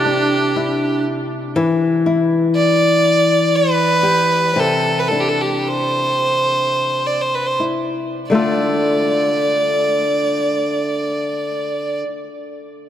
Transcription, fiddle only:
0.00 1.03 G4 medium
2.56 3.57 D5 medium
3.55 4.61 B4 medium
4.59 5.01 A4 medium
4.99 5.10 B4 medium
5.08 5.22 A4 medium
5.20 5.30 G4 medium
5.29 5.42 A4 medium
5.41 5.69 G4 medium
5.68 7.08 C5 medium
7.07 7.23 D5 soft
7.21 7.36 C5 soft
7.35 7.48 B4 soft
7.46 7.60 C5 soft
8.31 12.00 D5 soft

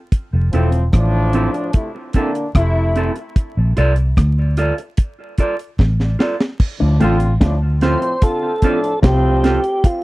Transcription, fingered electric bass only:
0.33 0.51 F1 medium
0.53 0.89 E1 medium
0.94 1.47 A1 medium
2.55 3.09 F1 medium
3.57 3.75 A#1 medium
3.78 4.13 C2 medium
4.18 4.71 D2 loud
5.79 6.15 A1 medium
6.81 6.99 D2 medium
7.01 7.37 A1 medium
7.41 7.95 D2 loud
9.04 9.57 C2 medium

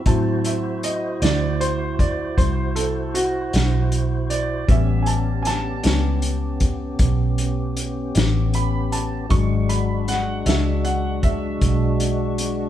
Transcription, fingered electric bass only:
0.06 1.19 A2 medium
1.22 2.34 D2 medium
2.38 3.50 C2 medium
3.54 4.66 B1 medium
4.69 5.81 A1 medium
5.85 6.97 C#2 medium
6.99 8.12 B1 medium
8.16 9.28 A1 medium
9.30 10.43 G#1 medium
10.46 11.58 C#2 medium
11.61 12.69 B1 medium

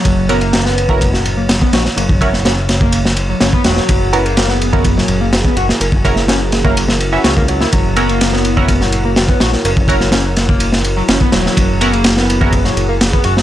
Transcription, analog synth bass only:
0.05 1.67 F#1 loud
1.73 1.89 A#1 medium
1.97 3.34 F#1 loud
3.41 3.57 F#1 loud
3.64 3.81 E1 medium
3.89 5.03 F#1 medium
5.08 5.50 F#1 loud
5.56 5.72 F#1 medium
5.80 7.18 F#1 loud
7.24 7.66 C#2 medium
7.73 9.34 F#1 loud
9.40 9.57 A#1 medium
9.65 11.02 F#1 loud
11.09 11.25 F#1 loud
11.32 11.49 E1 medium
11.57 12.71 F#1 loud
12.76 13.18 F#1 loud
13.25 13.41 F#1 medium

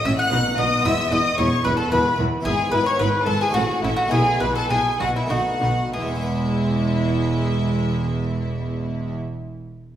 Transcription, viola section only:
0.06 0.14 C#4 medium
0.32 0.40 D#4 medium
0.59 0.67 D#4 medium
0.85 0.93 E4 medium
1.11 1.19 E4 medium
1.38 1.46 E4 medium
1.65 1.73 E4 medium
1.92 2.00 E4 medium
2.19 2.27 E4 medium
2.45 2.53 E4 medium
2.73 2.81 E4 medium
3.00 3.08 E4 medium
3.27 3.35 E4 medium
3.55 3.63 C#4 medium
3.84 3.92 C#4 medium
4.11 4.19 E4 medium
4.40 4.48 E4 medium
4.70 4.78 E4 medium
5.00 5.08 E4 medium
5.30 5.38 D#4 medium
5.61 5.69 D#4 medium
5.93 9.13 G#3 medium

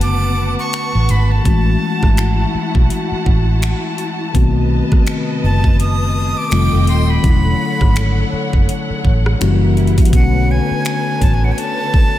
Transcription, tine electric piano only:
0.00 1.41 D3 medium
0.00 1.41 A3 medium
0.00 1.42 B3 medium
0.00 1.42 C#4 medium
0.00 1.43 F#4 medium
1.44 4.30 E3 medium
1.44 4.30 G#3 medium
1.44 4.31 A3 medium
1.44 4.31 C#4 medium
1.44 4.32 F#4 medium
4.33 6.47 D#3 medium
4.33 6.47 A3 medium
4.33 6.48 B3 medium
4.33 6.48 C4 medium
4.33 6.49 F#4 medium
6.51 7.24 D#3 medium
6.51 7.24 G3 medium
6.51 7.24 A3 medium
6.51 7.24 C4 medium
6.51 7.25 F4 medium
7.22 9.36 D3 medium
7.22 9.36 F#3 medium
7.22 7.32 G#3 medium
7.22 9.37 C#4 medium
7.22 9.38 E4 medium
7.31 9.40 A3 medium
9.40 10.13 E3 medium
9.40 10.13 G3 medium
9.40 10.13 A#3 medium
9.40 10.13 C#4 medium
9.40 10.14 F#4 medium
10.11 12.19 D3 medium
10.11 12.19 A3 medium
10.11 12.19 B3 medium
10.11 12.19 C#4 medium
10.11 12.19 F#4 medium

